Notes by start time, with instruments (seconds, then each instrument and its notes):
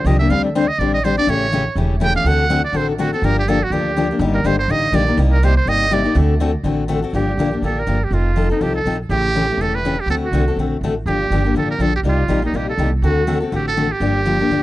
0.05 upright bass C2, steel-string acoustic guitar D3 F3 A#3 D4 G4, muted trumpet D#5
0.19 steel-string acoustic guitar A#3 D4 G4, muted trumpet E5
0.29 upright bass D2, steel-string acoustic guitar D3 G3 C4 D4 G4, muted trumpet F5
0.45 muted trumpet A4
0.55 steel-string acoustic guitar D3 G3 C4 D4 G4, muted trumpet C5
0.68 muted trumpet D#5
0.78 upright bass A1, steel-string acoustic guitar D3 G3 C4 D4 G4, muted trumpet D5
0.94 muted trumpet D#5
1.04 steel-string acoustic guitar D3 G3 C4 D4 G4, muted trumpet C5
1.17 steel-string acoustic guitar C4 D4 G4, muted trumpet D5
1.27 upright bass A1, steel-string acoustic guitar C#3 E3 A3 C#4 G4, muted trumpet C#5
1.52 steel-string acoustic guitar C#3 E3 A3 C#4 G4
1.75 upright bass E1, steel-string acoustic guitar C#3 E3 A3 C#4 G4
2.00 steel-string acoustic guitar C#3 E3 A3 C#4 G4, muted trumpet G5
2.14 steel-string acoustic guitar A3 C#4 G4, muted trumpet F5
2.24 upright bass D2, steel-string acoustic guitar D3 A3 C4 F#4 A4, muted trumpet F#5
2.50 steel-string acoustic guitar D3 A3 C4 F#4 A4
2.64 muted trumpet D5
2.72 upright bass A1, steel-string acoustic guitar D3 A3 C4 F#4 A4
2.77 muted trumpet C5
2.90 muted trumpet D#4
2.98 steel-string acoustic guitar D3 A3 C4 F#4 A4, muted trumpet F#4
3.13 steel-string acoustic guitar C4 F#4 A4, muted trumpet A4
3.22 upright bass G1, steel-string acoustic guitar D3 F3 A#3 D4 G4, muted trumpet A#4
3.39 muted trumpet G4
3.48 steel-string acoustic guitar D3 F3 A#3 D4 G4, muted trumpet A4
3.63 muted trumpet F#4
3.70 upright bass D2, steel-string acoustic guitar D3 F3 A#3 D4 G4, muted trumpet G4
3.97 steel-string acoustic guitar D3 F3 A#3 D4 G4
4.11 steel-string acoustic guitar A#3 D4 G4
4.19 upright bass G1, steel-string acoustic guitar D3 G3 A#3 D#4 G4
4.34 muted trumpet A#4
4.44 upright bass G1, steel-string acoustic guitar D3 G3 A#3 D#4 G4, muted trumpet C5
4.59 muted trumpet C5
4.68 upright bass A1, steel-string acoustic guitar D3 G3 A#3 D#4 G4, muted trumpet D#5
4.92 upright bass A#1, steel-string acoustic guitar D3 G3 A#3 D#4 G4, muted trumpet D5
5.07 steel-string acoustic guitar A#3 D#4 G4
5.17 upright bass C2, steel-string acoustic guitar C3 G3 A#3 D#4 G4
5.32 muted trumpet A#4
5.43 steel-string acoustic guitar C3 G3 A#3 D#4 G4, muted trumpet C5
5.57 muted trumpet C5
5.66 upright bass G1, steel-string acoustic guitar C3 G3 A#3 D#4 G4, muted trumpet D#5
5.91 steel-string acoustic guitar C3 G3 A#3 D#4 G4, muted trumpet D5
6.04 steel-string acoustic guitar A#3 D#4 G4
6.15 upright bass D2, steel-string acoustic guitar D3 A3 C4 F#4 A4
6.40 steel-string acoustic guitar D3 A3 C4 F#4 A4
6.63 upright bass A1, steel-string acoustic guitar D3 A3 C4 F#4 A4
6.88 steel-string acoustic guitar D3 A3 C4 F#4 A4
7.02 steel-string acoustic guitar C4 F#4 A4
7.13 upright bass G1, steel-string acoustic guitar D3 F3 A#3 D4 G4, muted trumpet G4
7.37 upright bass A#1, steel-string acoustic guitar D3 F3 A#3 D4 G4
7.51 steel-string acoustic guitar A#3 D4 G4
7.62 upright bass A1, steel-string acoustic guitar D3 F3 A#3 D4 G4, muted trumpet A4
7.79 muted trumpet A#4
7.87 upright bass G1, steel-string acoustic guitar D3 F3 A#3 D4 G4
8.04 muted trumpet G4
8.11 upright bass F1, steel-string acoustic guitar F3 C4 D#4 A4, muted trumpet F4
8.36 steel-string acoustic guitar F3 C4 D#4 A4
8.50 steel-string acoustic guitar C4 D#4 A4, muted trumpet D#4
8.61 upright bass C2, steel-string acoustic guitar F3 C4 D#4 A4, muted trumpet G4
8.75 muted trumpet A4
8.85 upright bass A#1, steel-string acoustic guitar F3 C4 D#4 A4
9.09 upright bass A1, steel-string acoustic guitar C#3 E3 A3 C#4 G4, muted trumpet G4
9.35 steel-string acoustic guitar C#3 E3 A3 C#4 G4
9.50 steel-string acoustic guitar A3 C#4 G4
9.58 upright bass E1, steel-string acoustic guitar C#3 E3 A3, muted trumpet A4
9.62 steel-string acoustic guitar C#4 G4
9.75 muted trumpet B4
9.85 steel-string acoustic guitar C#3 E3 A3 C#4 G4
10.00 muted trumpet G4
10.06 upright bass D2, steel-string acoustic guitar D3 A3 C4
10.10 steel-string acoustic guitar F#4 A4, muted trumpet A4
10.25 muted trumpet F#4
10.31 upright bass C2, steel-string acoustic guitar D3 A3 C4 F#4 A4
10.48 steel-string acoustic guitar C4 F#4 A4
10.57 upright bass A#1, steel-string acoustic guitar D3 A3 C4 F#4 A4
10.81 upright bass A1, steel-string acoustic guitar D3 A3 C4 F#4 A4
11.06 upright bass G1, steel-string acoustic guitar D3 F3 A#3 D4 G4, muted trumpet G4
11.30 upright bass G1, steel-string acoustic guitar D3 F3 A#3 D4 G4
11.44 steel-string acoustic guitar A#3 D4 G4
11.54 upright bass A1, steel-string acoustic guitar D3 F3 A#3 D4 G4, muted trumpet A4
11.71 muted trumpet A#4
11.79 upright bass A#1, steel-string acoustic guitar D3 F3 A#3 D4 G4, muted trumpet A4
11.96 muted trumpet G4
12.03 upright bass C2, steel-string acoustic guitar C3 G3 A#3 D#4 G4
12.08 muted trumpet F4
12.28 upright bass A1, steel-string acoustic guitar C3 G3 A#3 D#4 G4
12.42 steel-string acoustic guitar A#3 G4, muted trumpet D#4
12.53 upright bass A#1, steel-string acoustic guitar C3 G3 A#3 D#4 G4, muted trumpet G4
12.69 muted trumpet A4
12.78 upright bass C2, steel-string acoustic guitar C3 G3 A#3 D#4 G4
13.02 upright bass D2, steel-string acoustic guitar D3 A3 C4 F#4 A4, muted trumpet F#4
13.27 steel-string acoustic guitar D3 A3 C4 F#4 A4
13.40 steel-string acoustic guitar C4 F#4 A4
13.52 upright bass A1, steel-string acoustic guitar D3 A3 C4 F#4 A4, muted trumpet G4
13.68 muted trumpet A4
13.77 steel-string acoustic guitar D3 A3 C4 F#4 A4
13.92 muted trumpet G4
14.00 upright bass G1, steel-string acoustic guitar D3 F3 A#3 D4 G4
14.25 steel-string acoustic guitar D3 F3 A#3 D4 G4
14.39 steel-string acoustic guitar A#3 D4 G4
14.50 upright bass D2, steel-string acoustic guitar D3 F3 A#3 D4 G4